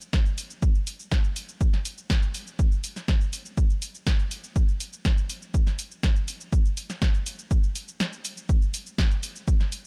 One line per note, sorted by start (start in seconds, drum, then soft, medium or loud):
0.01 shaker soft
0.13 kick loud
0.13 snare loud
0.13 shaker soft
0.26 shaker soft
0.38 open hi-hat loud
0.38 shaker medium
0.50 shaker soft
0.62 kick loud
0.62 shaker soft
0.75 shaker soft
0.87 open hi-hat loud
0.87 shaker medium
1.00 shaker soft
1.11 kick loud
1.11 snare loud
1.11 shaker soft
1.24 shaker soft
1.36 open hi-hat loud
1.36 shaker medium
1.49 shaker soft
1.61 kick loud
1.61 shaker soft
1.73 snare soft
1.73 shaker soft
1.85 open hi-hat loud
1.85 shaker medium
1.98 shaker soft
2.10 kick loud
2.10 snare loud
2.10 shaker soft
2.22 shaker soft
2.34 open hi-hat loud
2.34 shaker medium
2.47 shaker soft
2.59 kick loud
2.59 shaker soft
2.72 shaker soft
2.84 open hi-hat loud
2.84 shaker medium
2.96 snare soft
2.96 shaker soft
3.08 kick loud
3.08 snare loud
3.08 shaker soft
3.21 shaker soft
3.33 open hi-hat loud
3.33 shaker medium
3.45 shaker soft
3.57 kick loud
3.57 shaker soft
3.70 shaker soft
3.82 open hi-hat loud
3.82 shaker medium
3.95 shaker soft
4.07 kick loud
4.07 snare loud
4.07 shaker soft
4.19 shaker soft
4.31 open hi-hat loud
4.31 shaker medium
4.44 shaker soft
4.56 kick loud
4.56 shaker soft
4.68 shaker soft
4.80 open hi-hat loud
4.80 shaker medium
4.93 shaker soft
5.05 kick loud
5.05 snare loud
5.05 shaker soft
5.18 shaker soft
5.30 open hi-hat loud
5.30 shaker medium
5.42 shaker soft
5.54 kick loud
5.54 shaker soft
5.67 snare soft
5.67 shaker soft
5.79 open hi-hat loud
5.79 shaker medium
5.91 shaker soft
6.03 kick loud
6.03 snare loud
6.03 shaker soft
6.16 shaker soft
6.28 open hi-hat loud
6.28 shaker medium
6.41 shaker soft
6.53 kick loud
6.53 shaker soft
6.65 shaker soft
6.77 open hi-hat loud
6.77 shaker medium
6.90 snare soft
6.90 shaker soft
7.02 kick loud
7.02 snare loud
7.02 shaker soft
7.14 shaker soft
7.26 open hi-hat loud
7.26 shaker medium
7.39 shaker soft
7.51 kick loud
7.51 shaker soft
7.64 shaker soft
7.76 open hi-hat loud
7.76 shaker medium
7.88 shaker soft
8.00 snare loud
8.00 shaker soft
8.13 shaker soft
8.25 open hi-hat loud
8.25 shaker medium
8.37 shaker soft
8.49 kick loud
8.49 shaker soft
8.62 shaker soft
8.74 open hi-hat loud
8.74 shaker medium
8.86 shaker soft
8.98 kick loud
8.98 snare loud
8.98 shaker soft
9.11 shaker soft
9.23 open hi-hat loud
9.23 shaker medium
9.36 shaker soft
9.48 kick loud
9.48 shaker soft
9.60 snare soft
9.60 shaker soft
9.72 open hi-hat loud
9.72 shaker medium